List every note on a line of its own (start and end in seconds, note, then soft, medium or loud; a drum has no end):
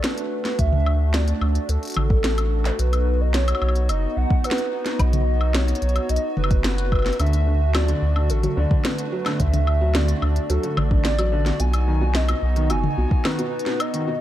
0.00 2.75 A3 medium
0.00 2.75 D4 medium
0.00 11.56 F#4 medium
0.00 0.59 B4 medium
0.00 snare loud
0.00 closed hi-hat medium
0.18 closed hi-hat medium
0.45 snare medium
0.45 closed hi-hat soft
0.59 1.33 D2 loud
0.59 1.16 E5 loud
0.59 kick medium
0.59 closed hi-hat medium
0.73 high tom medium
0.86 high woodblock medium
1.14 1.71 D5 loud
1.14 snare loud
1.14 closed hi-hat medium
1.28 closed hi-hat medium
1.41 1.58 D2 medium
1.41 high woodblock medium
1.55 closed hi-hat soft
1.69 1.77 D2 medium
1.69 1.96 A4 medium
1.69 closed hi-hat medium
1.83 closed hi-hat soft
1.85 closed hi-hat soft
1.87 closed hi-hat soft
1.90 closed hi-hat soft
1.92 closed hi-hat soft
1.94 2.71 A1 loud
1.94 2.81 A4 loud
1.94 closed hi-hat medium
1.94 high tom medium
1.94 high woodblock medium
2.10 kick loud
2.24 snare loud
2.24 closed hi-hat medium
2.38 closed hi-hat medium
2.38 high woodblock medium
2.65 snare medium
2.65 closed hi-hat soft
2.79 3.53 B1 loud
2.79 7.16 B3 medium
2.79 7.15 D#4 medium
2.79 3.22 B4 loud
2.79 closed hi-hat medium
2.93 closed hi-hat medium
2.93 high woodblock medium
3.21 3.36 D#5 medium
3.34 3.89 C#5 loud
3.34 snare loud
3.34 closed hi-hat medium
3.48 closed hi-hat medium
3.48 high woodblock medium
3.55 high woodblock medium
3.62 3.91 B1 medium
3.62 high woodblock soft
3.69 high woodblock soft
3.75 closed hi-hat soft
3.89 4.06 F#1 medium
3.89 4.18 D#5 loud
3.89 closed hi-hat medium
3.89 high woodblock medium
4.17 4.25 B1 medium
4.17 4.46 F#5 loud
4.30 kick loud
4.44 5.01 B4 loud
4.44 closed hi-hat medium
4.44 high woodblock soft
4.51 snare loud
4.58 closed hi-hat medium
4.86 snare medium
4.86 closed hi-hat soft
4.99 5.73 B1 loud
4.99 5.56 D#5 loud
4.99 kick medium
4.99 closed hi-hat medium
4.99 high woodblock medium
5.13 closed hi-hat medium
5.13 high tom medium
5.41 high woodblock soft
5.54 6.11 C#5 loud
5.54 snare loud
5.54 closed hi-hat medium
5.68 closed hi-hat soft
5.75 closed hi-hat soft
5.82 5.99 B1 medium
5.82 closed hi-hat soft
5.89 closed hi-hat soft
5.96 closed hi-hat soft
5.96 high woodblock medium
6.09 6.18 B1 medium
6.09 6.36 D#5 loud
6.09 closed hi-hat medium
6.16 closed hi-hat medium
6.37 7.11 F#1 medium
6.37 6.63 B4 medium
6.37 high tom medium
6.44 high woodblock medium
6.51 kick loud
6.51 closed hi-hat soft
6.64 7.16 B4 loud
6.64 snare loud
6.64 closed hi-hat medium
6.78 closed hi-hat medium
6.92 kick medium
6.92 high woodblock soft
6.95 high woodblock soft
6.99 high woodblock soft
7.02 snare medium
7.02 closed hi-hat soft
7.02 high woodblock soft
7.06 high woodblock soft
7.09 closed hi-hat soft
7.09 high woodblock soft
7.13 high woodblock soft
7.16 closed hi-hat medium
7.16 high woodblock soft
7.20 7.94 D2 loud
7.20 7.33 D3 loud
7.20 11.56 A3 medium
7.20 11.56 D4 medium
7.20 7.71 E5 loud
7.20 high woodblock soft
7.26 closed hi-hat soft
7.33 closed hi-hat medium
7.47 7.57 D3 medium
7.75 7.88 F#3 loud
7.75 8.31 D5 loud
7.75 snare loud
7.75 closed hi-hat medium
7.75 high woodblock medium
7.88 8.01 D3 loud
7.88 closed hi-hat soft
8.02 8.31 D2 medium
8.16 8.26 D3 medium
8.16 high woodblock medium
8.30 8.47 A1 medium
8.30 8.59 A4 loud
8.30 closed hi-hat medium
8.43 8.56 F#3 loud
8.43 closed hi-hat medium
8.43 high tom medium
8.57 8.66 D2 medium
8.57 8.70 D3 loud
8.57 8.86 D5 loud
8.71 kick loud
8.85 8.94 D3 medium
8.85 9.42 B4 loud
8.85 snare loud
8.85 closed hi-hat medium
8.98 closed hi-hat medium
9.12 9.25 F#3 loud
9.26 9.39 D3 loud
9.26 snare medium
9.26 closed hi-hat soft
9.26 high woodblock medium
9.40 10.14 D2 loud
9.40 9.96 E5 loud
9.40 kick medium
9.40 closed hi-hat medium
9.53 9.63 D3 medium
9.53 closed hi-hat medium
9.53 high tom medium
9.67 high woodblock medium
9.81 9.94 F#3 loud
9.95 10.08 D3 loud
9.95 10.51 D5 loud
9.95 snare loud
9.95 closed hi-hat medium
10.08 closed hi-hat medium
10.22 10.39 D2 medium
10.22 10.32 D3 medium
10.22 high woodblock medium
10.36 closed hi-hat soft
10.50 10.58 D2 medium
10.50 10.63 F#3 loud
10.50 10.79 A4 loud
10.50 closed hi-hat medium
10.63 10.77 D3 medium
10.63 closed hi-hat soft
10.77 11.51 A1 loud
10.77 11.04 D5 loud
10.77 high tom loud
10.77 high woodblock medium
10.91 11.01 D3 medium
10.91 kick loud
11.05 11.61 D5 loud
11.05 snare loud
11.05 closed hi-hat medium
11.19 11.32 F#3 loud
11.19 closed hi-hat medium
11.19 high woodblock medium
11.32 11.45 D3 loud
11.46 snare medium
11.46 closed hi-hat soft
11.60 12.34 B1 loud
11.60 11.70 B2 medium
11.60 14.21 B3 medium
11.60 14.21 D#4 medium
11.60 14.21 F#4 medium
11.60 12.16 G#5 loud
11.60 closed hi-hat medium
11.73 closed hi-hat medium
11.73 high woodblock medium
11.87 12.01 D#3 loud
12.01 12.14 B2 loud
12.15 12.72 D#5 loud
12.15 snare loud
12.15 closed hi-hat medium
12.29 12.39 B2 medium
12.29 closed hi-hat medium
12.29 high woodblock medium
12.42 12.72 B1 medium
12.56 12.69 D#3 loud
12.56 closed hi-hat soft
12.70 12.87 F#1 medium
12.70 12.83 B2 loud
12.70 13.27 G#5 loud
12.70 closed hi-hat medium
12.70 high woodblock medium
12.84 high tom loud
12.97 13.06 B1 medium
12.97 13.07 B2 medium
13.11 kick loud
13.25 13.38 D#3 loud
13.25 13.82 B4 loud
13.25 snare loud
13.25 high woodblock medium
13.39 13.52 B2 loud
13.39 closed hi-hat medium
13.59 closed hi-hat soft
13.66 13.76 B2 medium
13.66 snare medium
13.80 14.21 D#5 loud
13.80 closed hi-hat medium
13.80 high woodblock medium
13.94 14.07 D#3 loud
13.94 closed hi-hat medium
14.07 14.21 B2 loud